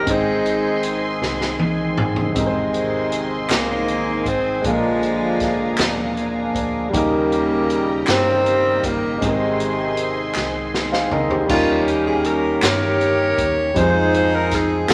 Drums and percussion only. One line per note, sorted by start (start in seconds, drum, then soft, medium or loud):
0.07 kick medium
0.07 closed hi-hat medium
0.46 closed hi-hat soft
0.83 closed hi-hat medium
1.23 snare soft
1.41 snare soft
1.59 high tom medium
1.97 mid tom medium
2.16 floor tom medium
2.35 kick medium
2.35 closed hi-hat medium
2.74 closed hi-hat soft
3.12 closed hi-hat soft
3.49 snare medium
3.49 clap medium
3.49 closed hi-hat medium
3.88 closed hi-hat soft
4.26 kick medium
4.26 closed hi-hat soft
4.64 kick loud
4.64 closed hi-hat medium
5.03 closed hi-hat soft
5.40 kick medium
5.40 snare soft
5.40 closed hi-hat soft
5.77 snare loud
5.77 clap medium
5.77 closed hi-hat medium
6.17 closed hi-hat soft
6.55 kick medium
6.55 closed hi-hat soft
6.94 kick loud
6.94 closed hi-hat medium
7.32 closed hi-hat soft
7.70 closed hi-hat medium
8.07 snare loud
8.07 clap medium
8.07 closed hi-hat medium
8.46 closed hi-hat soft
8.83 kick medium
8.83 closed hi-hat medium
9.22 kick medium
9.22 closed hi-hat medium
9.60 closed hi-hat soft
9.97 closed hi-hat soft
10.34 snare soft
10.34 clap medium
10.74 snare medium
10.93 snare medium
11.11 floor tom medium
11.31 floor tom medium
11.49 kick medium
11.49 crash medium
11.88 closed hi-hat soft
12.24 closed hi-hat medium
12.62 snare medium
12.62 clap medium
12.62 closed hi-hat medium
13.01 closed hi-hat soft
13.38 kick medium
13.38 closed hi-hat soft
13.76 kick loud
13.76 closed hi-hat medium
14.14 closed hi-hat soft
14.51 kick medium
14.51 snare soft
14.51 closed hi-hat medium
14.89 snare loud
14.89 clap medium
14.89 closed hi-hat medium